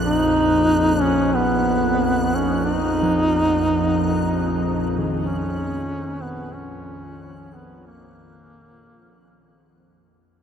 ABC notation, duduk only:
X:1
M:4/4
L:1/16
Q:1/4=46
K:Ebm
V:1 name="Duduk"
E3 D C3 D E6- E z | D3 C D3 C B,6 z2 |]